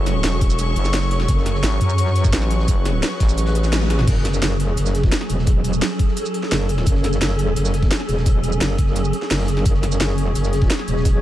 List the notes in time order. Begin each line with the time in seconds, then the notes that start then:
Already playing: F#1 F#3 C#4 F#4 G#4 A4 C#5 C#6
0.06 snare, closed hi-hat, shaker
0.24 E1, snare, closed hi-hat, shaker
0.41 kick, closed hi-hat, shaker
0.50 snare, shaker
0.59 closed hi-hat, shaker
0.76 F#1, closed hi-hat, shaker
0.85 snare, shaker
0.93 snare, closed hi-hat, shaker
1.02 shaker
1.11 closed hi-hat
1.20 snare
1.28 F#1 B4, kick, closed hi-hat, shaker
1.38 snare
1.46 snare, closed hi-hat, shaker
1.55 snare
1.63 G#1, snare, closed hi-hat, shaker
1.72 snare
1.80 F#2, closed hi-hat, shaker
1.90 shaker
1.98 closed hi-hat, shaker
2.07 snare
2.15 snare, closed hi-hat, shaker
2.24 kick, snare, shaker
2.33 A1, snare, closed hi-hat, shaker
2.42 snare, shaker
2.51 closed hi-hat
2.59 snare
2.68 F#1, kick, closed hi-hat, shaker
2.85 snare, closed hi-hat, shaker
3.03 snare, closed hi-hat, shaker
3.20 A1, kick, snare, closed hi-hat, shaker
3.29 snare, shaker
3.38 closed hi-hat, shaker
3.46 snare, closed hi-hat
3.55 snare, closed hi-hat, shaker
3.64 snare, closed hi-hat, shaker
3.72 snare, closed hi-hat, high tom, shaker
3.81 high tom, shaker
3.90 snare, closed hi-hat
3.99 snare, mid tom
4.08 F#1 F#3 C#4 G#4 A4, kick, closed hi-hat, crash, shaker
4.17 snare
4.25 snare, closed hi-hat, shaker
4.33 snare, shaker
4.42 F#1, snare, closed hi-hat, shaker
4.52 snare
4.60 closed hi-hat
4.77 F#1, closed hi-hat, shaker
4.86 snare, shaker
4.95 snare, closed hi-hat
5.04 kick, snare
5.12 snare, closed hi-hat, shaker
5.21 snare
5.30 E1, closed hi-hat, shaker
5.39 snare
5.46 kick, closed hi-hat, shaker
5.64 closed hi-hat, shaker
5.73 shaker
5.81 snare, closed hi-hat, shaker
5.99 kick, closed hi-hat
6.08 snare
6.17 closed hi-hat, shaker
6.26 shaker
6.34 closed hi-hat
6.43 snare
6.52 F#1, snare, closed hi-hat, shaker
6.69 closed hi-hat, shaker
6.78 snare
6.86 F#1, kick, closed hi-hat, shaker
6.95 snare
7.04 snare, closed hi-hat, shaker
7.13 snare, shaker
7.21 F#1, snare, closed hi-hat, shaker
7.30 snare
7.38 closed hi-hat
7.56 F#1, closed hi-hat, shaker
7.65 snare, shaker
7.74 snare, closed hi-hat
7.82 kick, snare
7.91 snare, closed hi-hat, shaker
8.00 snare
8.09 E1, closed hi-hat, shaker
8.17 snare
8.26 kick, closed hi-hat, shaker
8.43 closed hi-hat, shaker
8.52 shaker
8.61 F#1, snare, closed hi-hat, shaker
8.78 kick, closed hi-hat
8.87 snare
8.96 closed hi-hat, shaker
9.05 shaker
9.13 closed hi-hat
9.22 snare
9.31 F#1, snare, closed hi-hat, shaker
9.35 snare, closed hi-hat
9.39 snare, closed hi-hat
9.44 snare, closed hi-hat
9.48 closed hi-hat, shaker
9.57 snare
9.66 F#1 C#5, kick, closed hi-hat, shaker
9.74 snare
9.83 snare, closed hi-hat, shaker
9.91 snare, shaker
10.00 F#1, snare, closed hi-hat, shaker
10.09 snare
10.18 closed hi-hat
10.35 F#1, closed hi-hat, shaker
10.44 snare, shaker
10.53 snare, closed hi-hat
10.62 kick, snare
10.70 snare, closed hi-hat, shaker
10.79 snare
10.88 E1, closed hi-hat, shaker
10.96 snare
11.05 kick, closed hi-hat, shaker